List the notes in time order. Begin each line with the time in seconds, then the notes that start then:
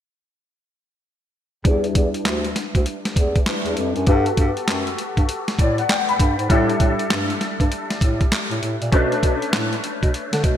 1.64 E2 G3 D4 E4 B4, kick, closed hi-hat
1.84 closed hi-hat
1.95 E2, kick, closed hi-hat
2.14 closed hi-hat
2.25 D2, snare, clap, closed hi-hat
2.44 closed hi-hat
2.56 snare, closed hi-hat
2.75 D2, kick, closed hi-hat
2.86 closed hi-hat
3.05 snare, closed hi-hat
3.16 E2, kick, closed hi-hat
3.36 kick, closed hi-hat
3.46 G3 D4 E4 B4, snare, clap, closed hi-hat
3.66 E2, closed hi-hat
3.77 F2, closed hi-hat
3.96 F#2, closed hi-hat
4.07 G2 B3 F#4 G4 A4, kick, closed hi-hat
4.26 closed hi-hat
4.37 G2, kick, closed hi-hat
4.57 closed hi-hat
4.68 F#2, snare, clap, closed hi-hat
4.87 closed hi-hat
4.98 closed hi-hat
5.17 G2, kick, closed hi-hat
5.29 closed hi-hat
5.48 snare, closed hi-hat
5.59 A2 D5, kick, closed hi-hat
5.78 F#5, closed hi-hat
5.89 G5, snare, clap, closed hi-hat
6.09 B5, closed hi-hat
6.20 G2, kick, closed hi-hat
6.38 G#2, closed hi-hat
6.49 A2 G3 D4 E4 A4, kick, closed hi-hat
6.70 closed hi-hat
6.80 A2, kick, closed hi-hat
6.99 closed hi-hat
7.10 G2, snare, clap, closed hi-hat
7.30 closed hi-hat
7.41 snare, closed hi-hat
7.60 G2, kick, closed hi-hat
7.72 closed hi-hat
7.90 snare, closed hi-hat
8.01 A2, kick, closed hi-hat
8.21 kick, closed hi-hat
8.32 snare, clap, closed hi-hat
8.51 A2, closed hi-hat
8.62 A2, closed hi-hat
8.81 A#2, closed hi-hat
8.92 B2 A3 C#4 D4 B4, kick, closed hi-hat
9.12 closed hi-hat
9.23 B2, kick, closed hi-hat
9.42 closed hi-hat
9.53 A2, snare, clap, closed hi-hat
9.73 closed hi-hat
9.84 closed hi-hat
10.03 B2, kick, closed hi-hat
10.14 closed hi-hat
10.33 D3, snare, closed hi-hat
10.44 B2, kick, closed hi-hat